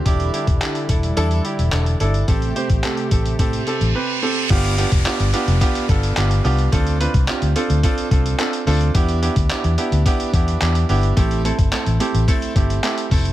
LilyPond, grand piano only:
\new Staff \with { instrumentName = "Grand piano" } { \time 4/4 \key a \minor \tempo 4 = 108 <d' e' g'>8 <d' e' g'>8 <d' e' g'>8 <d' e' a'>8 <d' e' a'>8 <d' e' g'>8 <d' e' a'>8 <d' e' a'>8 | <c' g' a'>8 <c' g' c''>8 <c' g' a'>8 <c' g' a'>8 <c' g' a'>8 <c' g' a'>8 <c' g' b'>8 <c' g' a'>8 | <b d' f' g'>8 <b d' f' g'>8 <b d' f' g'>8 <b d' f' g'>8 <b d' f' g'>8 <b d' f' a'>8 <b d' f' g'>8 <b d' f' g'>8 | <c' d' f' a'>8 <c' d' f' b'>8 <c' d' f' g'>8 <c' d' f' a'>8 <c' d' f' a'>8 <c' d' f' a'>8 <c' d' f' a'>8 <c' d' f' a'>8 |
<b d' e' g'>8 <b d' e' g'>8 <b d' e' g'>8 <b d' e' g'>8 <b d' e' g'>8 <b d' e' g'>8 <b d' e' g'>8 <b d' e' g'>8 | <a c' e' g'>8 <a c' e' a'>8 <a c' e' a'>8 <a c' e' g'>8 <a c' e' a'>8 <a c' e' g'>8 <a c' e' g'>8 <a c' e' a'>8 | }